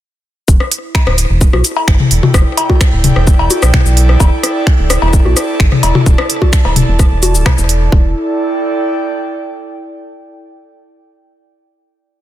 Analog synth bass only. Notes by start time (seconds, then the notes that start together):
0.48 E1
1.07 D1
1.30 E1
1.53 B1
1.88 G1
2.11 E1
2.34 E1
2.93 D1
3.16 E1
3.39 E1
3.63 B1
3.86 B1
4.20 E1
4.79 D1
5.02 E1
5.25 B1
5.60 G1
5.83 E1
6.06 E1
6.65 D1
6.88 E1
7.12 E1
7.35 D1
7.58 E1
7.92 E1